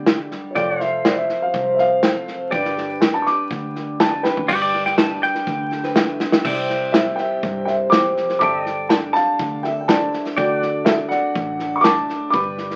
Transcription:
Already playing: fingered electric bass D2, steel-string acoustic guitar D3 G3 G4 D5, grand piano G4 B4 D5, pedal steel guitar D5 G5
0.06 steel-string acoustic guitar A3, snare, hi-hat pedal
0.31 steel-string acoustic guitar G3, snare
0.51 upright piano C#5
0.55 fingered electric bass F1, steel-string acoustic guitar F3, grand piano F4 A4 C5, pedal steel guitar D5 G5, upright piano D5, kick, snare
0.80 steel-string acoustic guitar A4, pedal steel guitar C5 F5, upright piano E5, snare
1.05 steel-string acoustic guitar A3 C4, upright piano D5, snare, hi-hat pedal
1.16 upright piano E5
1.29 steel-string acoustic guitar C5, snare
1.42 upright piano F5
1.54 fingered electric bass C2, steel-string acoustic guitar C3, kick, snare
1.75 upright piano E5, snare
1.79 upright piano F5
2.03 steel-string acoustic guitar A3 A4, snare, hi-hat pedal
2.28 steel-string acoustic guitar C5, snare
2.50 fingered electric bass G1, steel-string acoustic guitar G3 D4 G4, grand piano G4 B4 D5, pedal steel guitar D5 G5, kick, snare
2.55 steel-string acoustic guitar B4
2.65 snare
2.77 steel-string acoustic guitar A4, snare
2.90 steel-string acoustic guitar B4
3.01 steel-string acoustic guitar D4 G4, upright piano G5, snare, hi-hat pedal
3.14 upright piano A5
3.22 upright piano C#6
3.26 steel-string acoustic guitar B4, upright piano D6, snare
3.50 fingered electric bass D2, steel-string acoustic guitar D3, kick, snare
3.76 snare
4.00 steel-string acoustic guitar D4 B4, upright piano A5, snare, hi-hat pedal
4.11 upright piano A5
4.23 upright piano B4 G5, steel-string acoustic guitar B4, snare
4.37 floor tom
4.47 fingered electric bass G1, steel-string acoustic guitar G3, grand piano D4 G4 B4 D5, clean electric guitar G4, pedal steel guitar D5 G5, kick, snare, crash
4.62 clean electric guitar D5
4.73 steel-string acoustic guitar D5, snare
4.86 clean electric guitar G5, snare
4.98 steel-string acoustic guitar D4 B4, clean electric guitar A5, snare, hi-hat pedal
5.22 clean electric guitar G5, snare
5.35 snare
5.47 fingered electric bass D2, steel-string acoustic guitar D3, kick, snare
5.71 steel-string acoustic guitar A4, snare
5.84 steel-string acoustic guitar B4, snare
5.96 steel-string acoustic guitar A3, snare, hi-hat pedal
6.20 steel-string acoustic guitar B3, snare
6.32 snare
6.43 fingered electric bass C2, steel-string acoustic guitar C3 C5, grand piano E4 G4 C5 D5, pedal steel guitar E5 G5, kick, snare, crash
6.70 snare
6.92 steel-string acoustic guitar G3, upright piano C5 E5, kick, snare, hi-hat pedal
7.16 upright piano E5 G5, snare
7.20 steel-string acoustic guitar G4
7.43 fingered electric bass G2, steel-string acoustic guitar C3, kick, snare
7.65 steel-string acoustic guitar C5, upright piano E5 G5, snare
7.90 steel-string acoustic guitar E3, upright piano G5 D6, kick, snare, hi-hat pedal
8.17 steel-string acoustic guitar F3, snare
8.29 snare
8.39 fingered electric bass G1, steel-string acoustic guitar G3 A4, grand piano D4 G4 A4 D5, pedal steel guitar E5, upright piano A5 D6, kick, snare
8.43 pedal steel guitar G5
8.66 pedal steel guitar D5, snare
8.89 steel-string acoustic guitar D4, upright piano D5 A5, kick, snare, hi-hat pedal
9.13 steel-string acoustic guitar A4, upright piano F5 A5, snare
9.39 fingered electric bass D2, steel-string acoustic guitar D3, kick, snare
9.63 steel-string acoustic guitar A4, upright piano E5 G5, snare
9.80 upright piano G5
9.87 grand piano D4 G4 A4 C5, steel-string acoustic guitar D4, upright piano D5 A5, kick, snare, hi-hat pedal
10.12 steel-string acoustic guitar E4, snare
10.25 steel-string acoustic guitar G4, snare
10.36 fingered electric bass D2, steel-string acoustic guitar D3 A4, grand piano D4 F#4 A4 D5, pedal steel guitar D5 G5, kick, snare
10.57 pedal steel guitar F#5
10.62 snare
10.85 steel-string acoustic guitar A3, upright piano A4 E5, kick, snare, hi-hat pedal
11.09 steel-string acoustic guitar F#4, upright piano D5 F#5, snare
11.35 fingered electric bass A1, steel-string acoustic guitar A2, kick, snare
11.59 steel-string acoustic guitar A4, snare
11.76 upright piano C#6
11.81 steel-string acoustic guitar A3, upright piano A5 D6, kick, snare, hi-hat pedal
12.09 steel-string acoustic guitar D4, snare
12.30 fingered electric bass G1, steel-string acoustic guitar G3 B4, grand piano D4 G4 B4, upright piano B5 D6, kick, snare
12.35 grand piano D5
12.58 snare
12.71 snare

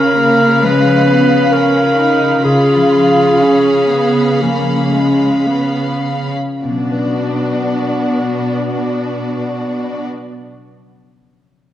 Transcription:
Already playing: harp C#3 C#4 C#5, cello section C#3, viola section C#4, clarinet A#4, violin section F5 B5
0.05 harp F4
0.19 viola section A#3
0.33 harp C#4
0.62 harp F3, viola section G#3, clarinet B4
0.92 harp C#4
1.07 viola section B3
1.22 harp F4
1.52 viola section C#4, clarinet A#4, harp C#5
1.83 harp F4
1.98 viola section D#4
2.13 harp C#4
2.44 harp C#3, cello section C#3, viola section F4, clarinet G#4, violin section F5 B5
2.75 harp F3
3.07 harp F4
3.40 viola section C#4, harp C#5
3.74 harp F4
3.90 viola section B3
4.08 harp C#4
4.41 harp F3, viola section A#3, clarinet C#4
4.77 harp C#4
4.93 viola section G#3
5.13 harp F4
5.48 viola section B3, harp C#5
5.86 harp F4
6.25 harp C#4
6.61 cello section B2, harp B2, viola section B3 D4, clarinet B3, violin section F#4 D5
6.70 harp F#3
6.77 harp B3
6.84 harp D4
6.91 harp B4
6.98 harp D5

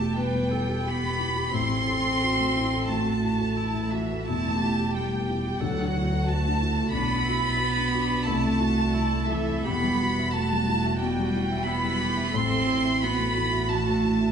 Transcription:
Already playing: double bass E1, felt piano E2 B3 E4, cello A3, viola G4, violin section A5
0.00 felt piano G4
0.17 felt piano B2, cello G3, viola B4, violin section G5
0.35 felt piano B3
0.51 felt piano E4, viola A4
0.69 felt piano G4
0.86 cello B3, viola G4, violin section B5
1.04 felt piano B3
1.19 felt piano E4
1.36 felt piano G4
1.53 double bass A1, felt piano A2, cello C4, viola E4, violin section C6
1.70 felt piano A3
1.87 felt piano E4, viola A4
2.05 felt piano A4
2.23 viola F#4
2.38 felt piano A3
2.56 felt piano E4, viola E4
2.74 felt piano A4
2.88 felt piano E3, cello A3, viola F#4, violin section A5
3.06 felt piano A3
3.23 felt piano E4
3.39 felt piano A4
3.57 viola E4
3.74 felt piano A3
3.91 cello E3, felt piano E4, viola F#4, violin section E5
4.11 felt piano A4
4.26 double bass E1, felt piano E2, cello A3, viola E4, violin section A5
4.47 felt piano B3
4.60 felt piano E4, viola G4
4.80 felt piano G4
4.95 cello G3, violin section G5
5.14 felt piano B3
5.29 felt piano E4
5.46 felt piano G4
5.60 double bass D2, felt piano D2, cello F#3, viola A4, violin section F#5
5.80 felt piano D4
5.94 felt piano E4, viola F#4
6.13 felt piano A4
6.27 cello A3, violin section A5
6.46 felt piano D4
6.62 felt piano E4
6.78 felt piano A4
6.92 double bass B1, felt piano B1, cello B3, viola D4, violin section B5
7.12 felt piano D4
7.27 viola E4, felt piano F#4
7.45 felt piano B4
7.59 viola F#4
7.77 felt piano D4
7.93 viola D4, felt piano F#4
8.11 felt piano B4
8.26 double bass C2, felt piano C2, cello A3, viola E4, violin section A5
8.45 felt piano A3
8.60 felt piano E4, viola F#4
8.78 felt piano E5
8.94 viola E4
9.13 felt piano A3
9.29 cello E3, felt piano E4, viola A4, violin section E5
9.49 felt piano E5
9.64 double bass E1, felt piano E2, cello B3, viola G4, violin section B5
9.84 felt piano G3
10.00 felt piano E4, viola F#4
10.19 felt piano E5
10.31 cello A3, violin section A5
10.52 felt piano G3
10.68 felt piano E4
10.86 felt piano E5
10.99 felt piano B2, cello G3, violin section G5
11.19 felt piano G3
11.36 felt piano E4
11.52 felt piano E5
11.64 cello B3, viola E4, violin section B5
11.84 felt piano G3
12.00 felt piano E4, viola G4
12.17 felt piano E5
12.34 double bass A1, felt piano A2, cello C4, viola A4, violin section C6
12.51 felt piano A3
12.67 viola E4, felt piano E4
12.85 felt piano E5
13.02 cello B3, viola F#4, violin section B5
13.18 felt piano A3
13.37 felt piano E4
13.53 felt piano E5
13.70 felt piano E3, cello A3, violin section A5
13.88 felt piano A3
14.05 felt piano E4
14.21 felt piano E5

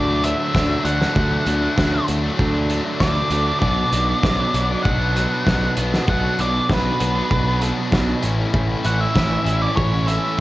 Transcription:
Already playing: picked electric bass D2, overdriven electric guitar D3 F#3 A3, lead electric guitar D5
0.08 overdriven electric guitar F#3 A3 D4
0.23 overdriven electric guitar D3 F#3 A3 D4, lead electric guitar E5, closed hi-hat
0.40 overdriven electric guitar F#3 A3 D4
0.54 picked electric bass D2, overdriven electric guitar D3 F#3 A3 D4, kick, snare
0.85 picked electric bass D2, overdriven electric guitar D3 F#3 A3 D4, lead electric guitar F#5, closed hi-hat
1.00 overdriven electric guitar F#3 A3 D4, snare
1.16 picked electric bass D2, overdriven electric guitar D3 F#3 A3 D4, kick
1.46 picked electric bass D2, overdriven electric guitar D3 F#3 A3 D4, closed hi-hat
1.62 overdriven electric guitar F#3 A3 D4
1.76 picked electric bass D2, overdriven electric guitar D3 F#3 A3 D4, kick, snare
1.92 overdriven electric guitar F#3 A3 D4
2.08 picked electric bass D2, overdriven electric guitar A3, closed hi-hat
2.23 overdriven electric guitar F#3 A3 D4
2.39 picked electric bass D2, overdriven electric guitar D3, kick
2.54 overdriven electric guitar F#3 A3 D4
2.70 overdriven electric guitar D3 F#3 A3 D4, closed hi-hat
2.84 overdriven electric guitar F#3 A3 D4
2.99 picked electric bass D2, overdriven electric guitar D3 F#3 A3 D4, lead electric guitar D5, kick, snare
3.30 picked electric bass D2, overdriven electric guitar D3 F#3 A3 D4, closed hi-hat
3.45 overdriven electric guitar F#3 A3 D4
3.60 picked electric bass B1, overdriven electric guitar B2 F#3 B3 D4, lead electric guitar D5, kick
3.91 picked electric bass B1, overdriven electric guitar B2 F#3 B3 D4, closed hi-hat
4.07 overdriven electric guitar F#3 B3 D4
4.23 picked electric bass B1, overdriven electric guitar B2 F#3 B3 D4, kick, snare
4.39 overdriven electric guitar F#3 B3 D4
4.54 picked electric bass B1, overdriven electric guitar B3, closed hi-hat
4.70 overdriven electric guitar F#3 B3 D4
4.83 picked electric bass B1, overdriven electric guitar B2, lead electric guitar F#5, kick
5.00 overdriven electric guitar F#3 B3 D4
5.16 overdriven electric guitar B2 F#3 B3 D4, closed hi-hat
5.31 overdriven electric guitar F#3 B3 D4
5.46 picked electric bass B1, overdriven electric guitar B2 F#3 B3 D4, kick, snare
5.77 picked electric bass B1, overdriven electric guitar B2 F#3 B3 D4, closed hi-hat
5.92 overdriven electric guitar F#3 B3 D4, snare
6.07 picked electric bass B1, overdriven electric guitar B2 F#3 B3 D4, lead electric guitar F#5, kick
6.39 picked electric bass B1, overdriven electric guitar B2 F#3 B3 D4, lead electric guitar D5, closed hi-hat
6.53 overdriven electric guitar F#3 B3 D4
6.68 picked electric bass B1, overdriven electric guitar B2 F#3 B3 D4, kick, snare
6.72 lead electric guitar B4
6.83 overdriven electric guitar F#3 B3 D4
7.00 picked electric bass B1, overdriven electric guitar B3, closed hi-hat
7.14 overdriven electric guitar F#3 B3 D4
7.31 picked electric bass B1, overdriven electric guitar B2, kick
7.46 overdriven electric guitar F#3 B3 D4
7.61 overdriven electric guitar B2 F#3 B3 D4, closed hi-hat
7.77 overdriven electric guitar F#3 B3 D4
7.92 picked electric bass B1, overdriven electric guitar B2 F#3 B3 D4, kick, snare
8.22 picked electric bass A1, overdriven electric guitar A2 E3 A3 C#4 E4, closed hi-hat
8.38 overdriven electric guitar A3 C#4 E4
8.54 picked electric bass A1, overdriven electric guitar A2 E3 A3 C#4 E4, kick
8.84 picked electric bass A1, overdriven electric guitar E3 A3 C#4 E4, lead electric guitar F#5, closed hi-hat
8.99 overdriven electric guitar A3 C#4 E4, lead electric guitar E5
9.14 picked electric bass A1, overdriven electric guitar A2 E3 A3 C#4 E4, kick, snare
9.30 overdriven electric guitar A3 C#4 E4
9.46 picked electric bass A1, overdriven electric guitar C#4, closed hi-hat
9.61 overdriven electric guitar A3 C#4 E4, lead electric guitar D5
9.76 picked electric bass A1, overdriven electric guitar E3, lead electric guitar C#5, kick
9.92 overdriven electric guitar A3 C#4 E4
10.07 overdriven electric guitar E3 A3 C#4 E4, lead electric guitar E5, closed hi-hat
10.24 overdriven electric guitar A3 C#4 E4

